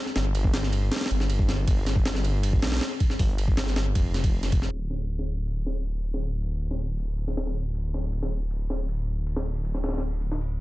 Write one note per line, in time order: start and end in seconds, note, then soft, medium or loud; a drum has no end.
0.06 snare soft
0.16 0.52 G1 loud
0.16 snare loud
0.16 ride medium
0.35 ride medium
0.44 kick loud
0.54 0.90 G1 medium
0.54 snare loud
0.54 ride medium
0.63 snare soft
0.73 ride medium
0.92 snare loud
0.92 ride medium
0.96 snare medium
0.96 ride medium
1.01 snare medium
1.01 ride medium
1.06 snare medium
1.06 ride medium
1.11 1.66 G1 loud
1.11 ride medium
1.20 snare medium
1.30 ride medium
1.39 kick medium
1.49 snare medium
1.49 ride medium
1.68 2.61 G1 loud
1.68 kick loud
1.68 ride loud
1.87 snare soft
1.87 ride medium
1.96 kick loud
2.06 snare loud
2.06 ride medium
2.15 snare medium
2.25 ride medium
2.43 ride medium
2.53 kick medium
2.62 2.80 A#1 medium
2.62 snare medium
2.62 ride medium
2.67 snare medium
2.67 ride medium
2.72 snare medium
2.72 ride medium
2.77 snare medium
2.77 ride medium
2.81 snare loud
2.81 ride medium
3.00 kick loud
3.00 ride medium
3.10 snare soft
3.19 3.56 G1 loud
3.19 kick loud
3.19 open hi-hat medium
3.38 ride medium
3.48 kick loud
3.57 3.94 G1 medium
3.57 snare loud
3.57 ride medium
3.67 snare soft
3.76 snare loud
3.76 ride medium
3.95 4.70 F1 medium
3.95 kick loud
3.95 ride medium
4.14 snare soft
4.14 ride medium
4.24 kick loud
4.24 ride medium
4.43 snare soft
4.43 ride medium
4.52 kick loud
4.52 ride medium
4.62 snare soft
4.71 10.61 D1 medium
4.71 ride medium
4.90 snare soft
4.90 ride medium
5.09 ride medium
5.19 snare medium
5.28 ride medium
5.47 ride medium
5.66 snare medium
5.66 ride medium
5.85 ride medium
6.04 ride medium
6.14 snare soft
6.23 open hi-hat medium
6.42 ride medium
6.61 ride medium
6.71 snare soft
6.80 ride medium
6.99 ride medium
7.18 ride medium
7.28 snare soft
7.37 snare medium
7.37 ride medium
7.47 snare soft
7.56 ride medium
7.75 ride medium
7.94 snare soft
7.94 ride medium
8.13 ride medium
8.23 snare medium
8.32 ride medium
8.51 ride medium
8.70 snare medium
8.70 ride medium
8.89 ride medium
9.27 ride medium
9.36 snare medium
9.36 ride medium
9.46 ride medium
9.65 ride medium
9.74 snare soft
9.84 snare medium
9.84 ride medium
9.88 snare medium
9.88 ride medium
9.93 snare medium
9.93 ride medium
9.98 snare medium
9.98 ride medium
10.03 ride medium
10.22 ride medium
10.31 snare soft
10.41 ride medium